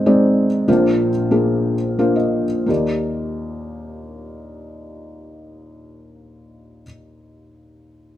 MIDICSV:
0, 0, Header, 1, 2, 480
1, 0, Start_track
1, 0, Key_signature, -3, "major"
1, 0, Tempo, 628931
1, 518, Time_signature, 3, 2, 24, 8
1, 1007, Tempo, 668896
1, 1487, Tempo, 714286
1, 5644, End_track
2, 0, Start_track
2, 0, Title_t, "Felt piano"
2, 0, Program_c, 0, 0
2, 0, Control_c, 0, 64, 127
2, 0, Note_on_c, 0, 32, 48
2, 0, Note_on_c, 0, 44, 47
2, 0, Note_on_c, 0, 56, 51
2, 0, Note_on_c, 0, 60, 48
2, 0, Note_on_c, 0, 63, 44
2, 0, Note_on_c, 0, 72, 55
2, 47, Note_on_c, 0, 74, 61
2, 48, Note_off_c, 0, 60, 0
2, 48, Note_on_c, 0, 60, 50
2, 49, Note_off_c, 0, 56, 0
2, 49, Note_on_c, 0, 56, 56
2, 50, Note_off_c, 0, 63, 0
2, 50, Note_on_c, 0, 63, 50
2, 354, Note_off_c, 0, 60, 0
2, 354, Note_off_c, 0, 74, 0
2, 355, Note_off_c, 0, 56, 0
2, 355, Note_off_c, 0, 63, 0
2, 486, Note_off_c, 0, 44, 0
2, 487, Note_off_c, 0, 32, 0
2, 518, Note_on_c, 0, 58, 53
2, 519, Note_on_c, 0, 62, 52
2, 520, Note_on_c, 0, 65, 57
2, 522, Note_off_c, 0, 72, 0
2, 522, Note_on_c, 0, 72, 59
2, 524, Note_on_c, 0, 34, 48
2, 524, Note_on_c, 0, 46, 47
2, 528, Control_c, 0, 64, 0
2, 643, Control_c, 0, 64, 127
2, 835, Note_off_c, 0, 58, 0
2, 836, Note_off_c, 0, 62, 0
2, 836, Note_off_c, 0, 65, 0
2, 837, Note_off_c, 0, 72, 0
2, 999, Note_on_c, 0, 62, 42
2, 1002, Note_on_c, 0, 58, 46
2, 1003, Note_on_c, 0, 65, 40
2, 1006, Note_on_c, 0, 68, 52
2, 1314, Note_off_c, 0, 62, 0
2, 1315, Note_off_c, 0, 58, 0
2, 1316, Note_off_c, 0, 65, 0
2, 1317, Note_off_c, 0, 68, 0
2, 1485, Note_on_c, 0, 58, 48
2, 1486, Note_on_c, 0, 62, 41
2, 1488, Note_on_c, 0, 77, 43
2, 1489, Note_on_c, 0, 65, 45
2, 1490, Note_on_c, 0, 72, 53
2, 1595, Note_off_c, 0, 77, 0
2, 1601, Note_on_c, 0, 75, 38
2, 1792, Note_off_c, 0, 58, 0
2, 1792, Note_off_c, 0, 62, 0
2, 1793, Note_off_c, 0, 65, 0
2, 1794, Note_off_c, 0, 72, 0
2, 1933, Note_off_c, 0, 75, 0
2, 1934, Note_off_c, 0, 34, 0
2, 1934, Note_off_c, 0, 46, 0
2, 1941, Note_on_c, 0, 58, 46
2, 1950, Note_on_c, 0, 63, 42
2, 1954, Note_on_c, 0, 39, 45
2, 1959, Note_on_c, 0, 67, 40
2, 1968, Control_c, 0, 64, 0
2, 1970, Note_on_c, 0, 74, 49
2, 2063, Control_c, 0, 64, 127
2, 4721, Note_off_c, 0, 58, 0
2, 4730, Note_off_c, 0, 63, 0
2, 4734, Note_off_c, 0, 39, 0
2, 4739, Note_off_c, 0, 67, 0
2, 4749, Note_off_c, 0, 74, 0
2, 5644, End_track
0, 0, End_of_file